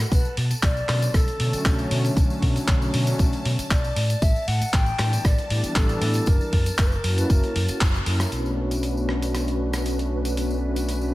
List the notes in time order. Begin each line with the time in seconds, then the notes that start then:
Already playing: F#4 F#5
0.11 B1 B4 A5, kick, closed hi-hat, tambourine
0.25 tambourine
0.37 B2, open hi-hat
0.51 muted fingered electric bass stroke, closed hi-hat, tambourine
0.62 B1 D5, kick, clap, closed hi-hat, tambourine
0.77 tambourine
0.88 B2 D3 F#3 A3 C#4, cross-stick, clap, open hi-hat
1.02 closed hi-hat, tambourine
1.14 B1 A4, kick, cross-stick, closed hi-hat, tambourine
1.28 closed hi-hat, tambourine
1.39 B2 D3 F#3 A3 C#4, open hi-hat
1.52 D3 F#3 A3 C#4, muted fingered electric bass stroke, closed hi-hat, tambourine
1.65 B1, kick, clap, closed hi-hat, tambourine
1.79 closed hi-hat, tambourine
1.91 B2, open hi-hat
2.05 closed hi-hat, tambourine
2.17 B1, kick, closed hi-hat, tambourine
2.30 tambourine
2.42 B2, kick, open hi-hat
2.56 muted fingered electric bass stroke, closed hi-hat, tambourine
2.68 B1, kick, clap, closed hi-hat, tambourine
2.82 tambourine
2.93 B2 D3 F#3 A3 C#4, open hi-hat
3.07 closed hi-hat, tambourine
3.19 B1 D3 F#3 A3 C#4, kick, closed hi-hat, tambourine
3.33 closed hi-hat, tambourine
3.45 B2, open hi-hat
3.59 muted fingered electric bass stroke, closed hi-hat, tambourine
3.71 B1 D5, kick, clap, closed hi-hat, tambourine
3.84 closed hi-hat, tambourine
3.96 A2, open hi-hat
4.10 closed hi-hat, tambourine
4.22 A1 E5, kick, closed hi-hat, tambourine
4.36 tambourine
4.48 A2 F#5, open hi-hat
4.61 muted fingered electric bass stroke, closed hi-hat, tambourine
4.73 A1 G5, kick, clap, closed hi-hat, tambourine
4.86 tambourine
4.98 A2 E3 G3 B3 D4, cross-stick, clap, open hi-hat
5.13 closed hi-hat, tambourine
5.25 A1 D5, kick, cross-stick, closed hi-hat, tambourine
5.38 closed hi-hat, tambourine
5.50 A2 E3 G3 B3 D4, open hi-hat
5.63 E3 G3 B3 D4, muted fingered electric bass stroke, closed hi-hat, tambourine
5.76 A1 A4, kick, clap, closed hi-hat, tambourine
5.89 closed hi-hat, tambourine
6.01 A2, open hi-hat
6.14 closed hi-hat, tambourine
6.26 F#1 A#4, kick, closed hi-hat, tambourine
6.41 tambourine
6.53 F#2, kick, open hi-hat
6.66 muted fingered electric bass stroke, closed hi-hat, tambourine
6.78 F#1 A#4, kick, clap, closed hi-hat, tambourine
6.87 B4
6.92 A#4, tambourine
7.04 F#2 A#3 C#4 E4 F#4, open hi-hat
7.18 B4, closed hi-hat, tambourine
7.29 F#1 A#3 C#4 E4 F#4 A#4, kick, closed hi-hat, tambourine
7.44 closed hi-hat, tambourine
7.56 F#2, open hi-hat
7.68 A#3 C#4 E4 F#4, muted fingered electric bass stroke, closed hi-hat, tambourine
7.81 F#1, kick, clap, closed hi-hat, tambourine
7.94 closed hi-hat, tambourine
8.06 F#2 A#3 C#4 E4 A#4, open hi-hat
8.20 cross-stick, closed hi-hat, tambourine
8.31 B1 A3 B3 C#4 D4 F#4 B4, closed hi-hat, tambourine
8.46 tambourine
8.71 closed hi-hat, tambourine
8.83 closed hi-hat, tambourine
8.97 tambourine
9.09 cross-stick
9.22 closed hi-hat, tambourine
9.35 cross-stick, closed hi-hat, tambourine
9.48 closed hi-hat, tambourine
9.73 cross-stick, closed hi-hat, tambourine
9.86 closed hi-hat, tambourine
9.99 closed hi-hat, tambourine
10.25 closed hi-hat, tambourine
10.37 closed hi-hat, tambourine
10.51 tambourine
10.76 closed hi-hat, tambourine
10.89 closed hi-hat, tambourine
11.01 tambourine